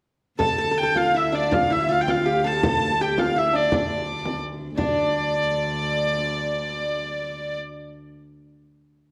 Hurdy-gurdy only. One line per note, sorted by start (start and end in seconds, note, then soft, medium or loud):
0.39 0.78 A5 medium
0.78 0.98 G5 medium
0.98 1.17 F5 medium
1.17 1.35 E5 medium
1.35 1.54 D5 medium
1.54 1.72 F5 medium
1.72 1.92 E5 medium
1.92 2.02 F5 medium
2.01 2.11 G5 medium
2.11 2.47 F5 medium
2.47 2.65 A5 medium
2.65 3.01 A5 medium
3.01 3.19 G5 medium
3.19 3.38 F5 medium
3.38 3.56 E5 medium
3.56 3.74 D5 medium
3.74 4.41 D5 medium
4.79 7.57 D5 medium